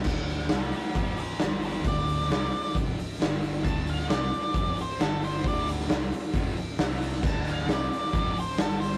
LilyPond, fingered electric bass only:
\new Staff \with { instrumentName = "Fingered electric bass" } { \clef bass \time 4/4 \key g \lydian \tempo 4 = 134 d,,4 c,8 r8 f,,8 r8 g,,4 | d,,4 c,8 r8 f,,8 r8 g,,4 | d,,4 c,8 r8 f,,8 r8 g,,4 | d,,4 c,8 r8 f,,8 r8 c,4 |
d,,4 c,8 r8 f,,8 r8 g,,4 | }